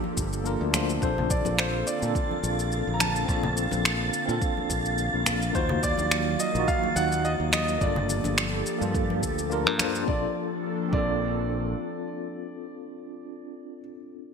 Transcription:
Already playing: F3 A#3 D4 F4 G4 A4
0.04 high conga
0.17 G1, kick, shaker
0.33 shaker
0.44 A#3 D4 F4 A#4, shaker
0.61 D2
0.72 A#3 D4 F4 C5, finger snap, high conga, shaker
0.89 shaker
0.99 A#1 D3 A#3 C4 D4 F5 A6, kick, shaker
1.03 F4 A4 C5
1.18 low conga
1.30 D5, kick, shaker
1.45 A#1, high conga, shaker
1.59 C5, finger snap, shaker
1.87 D5, shaker
1.99 A#2 C4 D4, shaker
2.03 F4 A4
2.15 kick, shaker
2.31 high conga
2.43 A#1, shaker
2.59 shaker
2.72 shaker
2.87 A#1
2.94 A#5
3.00 A5, finger snap, high conga, shaker
3.16 shaker
3.25 A#1 C4 D4, kick, shaker
3.30 F4 A4
3.43 low conga
3.57 shaker
3.71 A#1, high conga, shaker
3.85 finger snap, shaker
4.13 shaker
4.25 A#2 C4 D4, shaker
4.30 F4 A4
4.41 kick, shaker
4.57 high conga
4.70 A#1, kick, shaker
4.86 shaker
4.98 shaker
5.14 A#1
5.26 finger snap, high conga, shaker
5.42 shaker
5.51 D#2 D#3 F#3 A#3 D#4, kick, shaker
5.55 F4 F#4 C5
5.69 low conga
5.83 D5, kick, shaker
5.98 D#2, high conga, shaker
6.11 finger snap, shaker
6.40 D#5, shaker
6.52 A#1 A#3 D#4, shaker
6.56 F4 F#4
6.68 F5, kick, shaker
6.83 high conga
6.96 D#2 F#5, shaker
7.12 shaker
7.25 D#5, shaker
7.40 D#2
7.52 D#5, finger snap, high conga, shaker
7.68 shaker
7.78 G1 F3 A#3 D4 G4 A4 D5, kick, shaker
7.83 F4 A4
7.96 low conga
8.09 shaker
8.24 G1, high conga, shaker
8.38 finger snap, shaker
8.66 shaker
8.79 G2 A#3 D4, shaker
8.83 F4 A4
8.94 kick, shaker
9.10 high conga
9.23 D2, kick, shaker
9.39 shaker
9.50 A#3 D4 F4 A#4, shaker
9.66 G2
9.78 A#3 D4 F4 C5, finger snap, high conga, shaker
9.95 shaker
10.03 C4 D4
10.07 A#1 F3 A#3 D4 F4 A4 D5, kick
10.13 A4
10.88 C4 D4
10.93 A#1 F4 D5, kick
10.98 A4

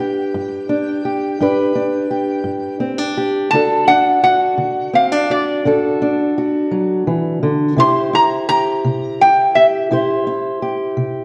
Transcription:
Already playing: D4 B4 G5
0.00 G4
0.34 G2
0.69 D4
1.05 G4
1.40 G2 D4 G4 B4
1.75 D4
2.11 G4
2.44 G2
2.80 C4
2.98 D4
3.18 G4
3.51 D3 D4 F#4 A5
3.55 A4
3.88 D4 F#5
4.23 F#4 F#5
4.58 D3
4.94 C4 F5
5.12 D4
5.30 F#4 D5
5.65 D3 D4 F#4 A4
6.02 D4
6.38 F#4
6.71 F#3
7.07 E3
7.43 D3
7.77 C3 E4 G4 C5 C6
8.13 E4 A#5
8.49 G4 A#5
8.84 C3
9.21 E4 G5
9.55 G4 E5
9.91 C3 E4 G4 C5
10.27 E4
10.62 G4
10.97 C3

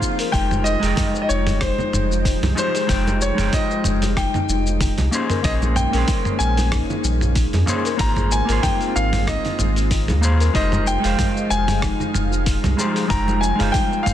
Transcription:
Already playing: F3 G#3 A#3 C4 D#4 F4 G#4 C5, swell
0.01 D#4, kick, shaker
0.19 A#4, open hi-hat, shaker
0.32 F1 F3 G#3 D#4 F4 G4 C5 G5, kick, open hi-hat, shaker
0.51 G4, mid tom, high conga, shaker
0.64 D#4 D#5, shaker
0.80 F1 G#3 D#4 F4 G#4, open hi-hat, shaker
0.85 D#5 G5
0.96 D#4, kick, mid tom, open hi-hat, high conga, shaker
1.14 C5, shaker
1.22 D#5
1.29 F1 D#4 C#5, shaker
1.47 G4, mid tom, open hi-hat, high conga, shaker
1.61 D#4 C5, kick, cross-stick, open hi-hat, shaker
1.78 D#4, low conga, shaker
1.93 F1 D#4, mid tom, high conga, shaker
2.11 F4, shaker
2.25 D#4, kick, open hi-hat, shaker
2.42 C2 G4, mid tom, open hi-hat, high conga, low conga, shaker
2.55 G#3 D#4 F4 G4 C5, shaker
2.75 G#4, open hi-hat, shaker
2.87 F1 G#3 D#4 F4 C5 G5, kick, mid tom, open hi-hat, shaker
3.07 G4, high conga, shaker
3.22 D#4 C#5, shaker
3.35 F1 G#3 D#4 F4, mid tom, open hi-hat
3.39 G#4 C5 G5, shaker
3.53 D#4 D#5, kick, open hi-hat, high conga, shaker
3.71 C5, shaker
3.84 F1 D#4, mid tom, shaker
4.02 G4, open hi-hat, high conga, shaker
4.17 D#4 G5, kick, cross-stick, open hi-hat, shaker
4.34 D#4, mid tom, low conga, shaker
4.49 F1 D#4, high conga, shaker
4.67 F4, shaker
4.81 D#4, kick, mid tom, open hi-hat, shaker
4.98 C2 G4, open hi-hat, high conga, low conga, shaker
5.11 G#3 A#3 C#4 D#4 G#4 C5, shaker
5.30 A#4, mid tom, open hi-hat, shaker
5.43 A#1 A#3 C#4 D#4 G#4 C5 D#5, kick, open hi-hat, shaker
5.62 G#4, high conga, shaker
5.76 D#4 G5, mid tom, shaker
5.91 A#1 A#3 C#4 D#4 A#4, open hi-hat, shaker
5.96 G#4 C5
6.08 D#4, kick, open hi-hat, high conga, shaker
6.25 C5, mid tom, shaker
6.39 A#1 D#4 G#5, shaker
6.57 G#4, open hi-hat, high conga, shaker
6.72 D#4, kick, cross-stick, mid tom, open hi-hat, shaker
6.90 D#4, low conga, shaker
7.04 A#1 D#4, high conga, shaker
7.21 F4, mid tom, shaker
7.35 D#4, kick, open hi-hat, shaker
7.53 F2 G#4, open hi-hat, high conga, low conga, shaker
7.66 A#3 C#4 D#4 G#4 C5, mid tom, shaker
7.85 A#4, open hi-hat, shaker
7.97 G#1 G#3 A#3 C4 D#4 F4 G#4 C5 A#5, kick, open hi-hat, shaker
8.16 G#4, mid tom, high conga, shaker
8.31 D#4 G#5, shaker
8.45 G#1 A#3 D#4 F4 A#4, open hi-hat
8.49 G#4 C5, shaker
8.63 D#4 G5, kick, mid tom, open hi-hat, high conga, shaker
8.81 open hi-hat, shaker
8.95 G#1 D#4 F5, shaker
9.13 G#4, mid tom, open hi-hat, high conga, shaker
9.27 D#4 D#5, kick, cross-stick, open hi-hat, shaker
9.45 D#4, open hi-hat, low conga, shaker
9.59 G#1 D#4, mid tom, high conga, shaker
9.76 F4, open hi-hat, shaker
9.91 D#4, kick, open hi-hat, shaker
10.08 D#2 G#4, mid tom, open hi-hat, high conga, low conga, shaker
10.21 A#3 D#4 F4 G#4 C5, shaker
10.40 A#4, open hi-hat, shaker
10.53 F1 F3 G#3 D#4 F4 G4 C5 D#5, kick, open hi-hat, shaker
10.57 F5
10.72 G4, mid tom, high conga, shaker
10.87 D#4 G5, shaker
11.00 G#3 D#4 F4
11.04 F1 G#4 C5 F5, open hi-hat, shaker
11.19 D#4, kick, mid tom, open hi-hat, high conga, shaker
11.37 C5, shaker
11.50 F1 D#4 G#5, shaker
11.67 G4, mid tom, open hi-hat, high conga, shaker
11.82 D#4, kick, cross-stick, open hi-hat, shaker
11.99 D#4, low conga, shaker
12.14 F1 D#4, mid tom, high conga, shaker
12.31 F4, shaker
12.45 D#4, kick, open hi-hat, shaker
12.63 C2 G4, mid tom, open hi-hat, high conga, low conga, shaker
12.77 G#3 D#4 F4 G4 G#4 C5, shaker
12.95 G#4, open hi-hat, shaker
13.08 F1 G#3 D#4 F4 C5 G5 A#5, kick, mid tom, open hi-hat, shaker
13.28 G4, high conga, shaker
13.41 D#4 G#5, shaker
13.55 G#3 D#4 F4 G#4
13.60 F1 C5 F5, mid tom, open hi-hat, shaker
13.72 D#4 G5, kick, open hi-hat, high conga, shaker
13.91 C5, shaker
14.03 F1 D#4 F5, mid tom
14.07 shaker

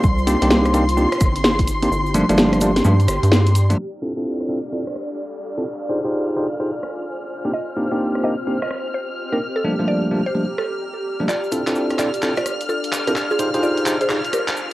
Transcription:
Already playing: C4 F4 C5 C6
0.03 C2, kick, cabasa
0.18 cabasa
0.27 A#3 C4 D4 D#4 G4, closed hi-hat, cabasa
0.40 C2 A#3 C4 D4 D#4 G4, closed hi-hat, cabasa
0.50 G4, snare, cabasa
0.65 cross-stick, closed hi-hat, cabasa
0.74 A#3 C4 D4 D#4 G4, closed hi-hat, cabasa
0.89 closed hi-hat, cabasa
0.97 A#3 C4 D4 D#4 G4, cabasa
1.12 cross-stick, closed hi-hat, cabasa
1.20 G1, kick, cross-stick, closed hi-hat, cabasa
1.36 closed hi-hat, cabasa
1.44 snare, cabasa
1.59 kick, closed hi-hat, cabasa
1.68 closed hi-hat, cabasa
1.82 A#3 C4 D4 D#4 G4, closed hi-hat, cabasa
1.91 G1, cabasa
2.06 cabasa
2.14 F3 G3 A3 A#3 D4, closed hi-hat, cabasa
2.29 G1 F3 G3 A3 A#3 D4, closed hi-hat, cabasa
2.37 snare, cabasa
2.53 cross-stick, closed hi-hat, cabasa
2.61 F3 G3 A3 A#3 D4 D5, closed hi-hat, cabasa
2.76 snare, closed hi-hat, cabasa
2.84 G2 F3 G3 A3 A#3 D4, cabasa
3.00 closed hi-hat, cabasa
3.08 G1, cross-stick, closed hi-hat, cabasa
3.23 G2, closed hi-hat, cabasa
3.32 snare, cabasa
3.46 closed hi-hat, cabasa
3.55 closed hi-hat, cabasa
3.70 F3 G3 A3 A#3 D4, closed hi-hat, cabasa
3.78 D4 F6, crash, downlifter
4.02 C4 D4 E4 F4 A4
4.17 C4 D4 E4 F4 A4
4.40 cross-stick
4.49 C4 D4 E4 F4 A4
4.65 F5
4.72 C4 D4 E4 F4 A4
4.87 cross-stick
4.96 cross-stick
5.57 C4 D4 E4 F4 A4
5.66 F4
5.87 D#4 F4 G4 G#4 C5
6.04 D#4 F4 G4 G#4 C5
6.36 D#4 F4 G4 G#4 C5
6.60 D#4 F4 G4 G#4 C5
6.83 cross-stick
7.30 C4
7.45 A#3 C4 D4 D#4 G4
7.54 D#5
7.70 G4
7.77 A#3 C4 D4 D#4 G4
7.92 A#3 C4 D4 D#4 G4
8.15 cross-stick
8.24 A#3 C4 D4 D#4 G4 D#5
8.47 A#3 C4 D4 D#4 G4
8.62 D#5, cross-stick
8.71 cross-stick
8.94 C5
9.32 A#3 C4 D4 D#4 G4 A#4
9.56 A4
9.64 F3 G3 A3 A#3 D4
9.79 F3 G3 A3 A#3 D4
9.88 D5
10.11 F3 G3 A3 A#3 D4
10.18 D5
10.26 C5
10.35 F3 G3 A3 A#3 D4
10.58 A4, cross-stick
11.20 F3 G3 A3 A#3 D4
11.28 D4 F4 D5 F6, clap, riser, cabasa
11.44 cabasa
11.52 C4 D4 E4 F4 A4, closed hi-hat, cabasa
11.67 C4 D4 E4 F4 A4, clap, closed hi-hat, cabasa
11.74 F5, cabasa
11.89 cross-stick, closed hi-hat, cabasa
11.98 C4 D4 E4 F4 A4 D5, clap, closed hi-hat, cabasa
12.14 closed hi-hat, cabasa
12.22 C4 D4 E4 F4 A4, clap, cabasa
12.36 F4 D5, cross-stick, closed hi-hat, cabasa
12.46 cross-stick, closed hi-hat, cabasa
12.61 closed hi-hat, cabasa
12.69 F4 A4, cabasa
12.84 closed hi-hat, cabasa
12.93 clap, closed hi-hat, cabasa
13.08 C4 D4 E4 F4 G4 A4 A#4, closed hi-hat, cabasa
13.16 F4, clap, cabasa
13.31 F4 G#4 C5, cabasa
13.39 D#4 F4 G4 G#4 C5, closed hi-hat, cabasa
13.54 D#4 F4 G4 G#4 C5, closed hi-hat, cabasa
13.63 F4 D5, cabasa
13.78 closed hi-hat, cabasa
13.86 D#4 F4 G4 G#4 C5, clap, closed hi-hat, cabasa
14.01 G#4 C5, closed hi-hat, cabasa
14.10 D#4 F4 G4 G#4 C5, clap, cabasa
14.25 closed hi-hat, cabasa
14.33 G4 A#4, cross-stick, closed hi-hat, cabasa
14.48 clap, closed hi-hat, cabasa
14.57 cabasa

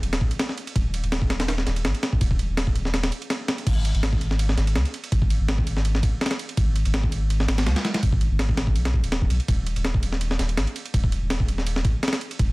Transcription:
Already playing: D#1
0.03 ride
0.13 snare, ride
0.21 kick
0.31 ride
0.39 snare, ride
0.49 snare
0.58 ride
0.67 ride
0.76 D#1, kick, ride
0.94 ride
1.03 D#1, ride
1.12 snare, ride
1.22 kick
1.30 snare, ride
1.40 snare, ride
1.48 snare, ride
1.58 snare
1.66 D#1, snare, ride
1.76 ride
1.85 G#1, snare, ride
1.94 ride
2.03 snare, ride
2.13 kick
2.21 D#1, kick, ride
2.31 kick
2.39 ride
2.49 D#1
2.57 snare, ride
2.67 kick
2.76 ride
2.85 snare
2.94 snare, ride
3.04 snare, ride
3.12 ride
3.22 ride
3.30 snare, ride
3.48 snare, ride
3.58 ride
3.67 G#1, kick, crash, ride
3.85 ride
3.94 G#1, ride
4.03 snare, ride
4.13 kick
4.21 ride
4.31 snare
4.39 ride
4.49 snare
4.57 G#1, snare, ride
4.67 ride
4.76 C#2, snare, ride
4.85 ride
4.94 ride
5.04 ride
5.12 G#1, kick, ride
5.22 kick
5.30 ride
5.40 G#1
5.48 snare, ride
5.58 kick
5.67 ride
5.77 snare
5.85 ride
5.95 snare
6.03 kick, ride
6.21 snare, ride
6.26 snare, ride
6.31 snare, ride
6.39 ride
6.49 ride
6.57 G#1, kick, ride
6.76 ride
6.85 G#1, ride
6.94 snare, ride
7.04 kick
7.12 ride
7.30 ride
7.40 snare
7.48 G#1, snare, ride
7.58 snare, ride
7.66 C#2, snare, ride
7.76 snare, ride
7.85 snare, ride
7.94 snare, ride
8.03 G#1, kick, ride
8.13 kick
8.21 ride
8.31 G#1
8.39 snare, ride
8.49 kick
8.57 snare, ride
8.67 kick
8.76 B1, ride
8.85 snare, ride
8.94 kick
9.03 D#1, ride
9.12 snare, ride
9.22 kick
9.30 B1, ride
9.40 ride
9.48 D#1, kick, ride
9.66 ride
9.76 D#1, ride
9.85 snare, ride
9.94 kick
10.03 ride
10.13 snare
10.21 ride
10.31 snare
10.39 D#1, snare, ride
10.49 ride
10.57 G#1, snare, ride
10.67 ride
10.76 ride
10.85 ride
10.94 D#1, kick, ride
11.04 kick
11.12 ride
11.22 D#1
11.30 snare, ride
11.40 kick
11.48 ride
11.58 snare
11.67 ride
11.76 snare
11.85 kick, ride
12.03 snare, ride
12.08 snare, ride
12.13 snare, ride
12.21 ride
12.31 ride
12.39 D#1, kick, ride

